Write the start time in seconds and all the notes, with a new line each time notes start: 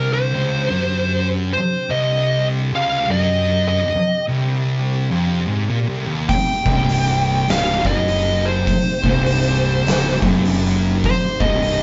Already playing: C2 C3 D3 G4 A#4
0.13 C5
0.34 C#2
0.70 F#2
1.53 C5
1.89 C2 D#5
2.73 C#2 F5
3.09 F#2 D#5
3.68 D#5
4.28 C2
5.11 F2
5.48 G#2
5.70 A#2
5.89 C2
6.07 D#2
6.29 D#4 G5, kick, open hi-hat
6.66 C1 C2, kick
6.89 open hi-hat
7.48 C#1 C#2 F5, snare, open hi-hat
7.85 F#1 F#2 D#5, kick
8.08 open hi-hat
8.46 C5
8.67 kick, open hi-hat
9.04 C1 C2, kick
9.26 open hi-hat
9.86 C#1 C#2, snare, open hi-hat
10.22 F#1 F#2, kick
10.45 open hi-hat
10.66 snare
11.04 C5, kick, open hi-hat
11.40 C1 C2 D#5, kick
11.63 open hi-hat